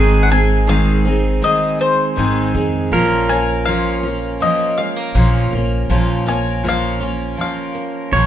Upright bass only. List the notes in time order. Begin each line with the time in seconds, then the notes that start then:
Already playing: G#1
2.18 G#1
2.55 F2
2.92 A#1
5.15 A#1
5.53 A#1
5.89 A#1
8.12 A#1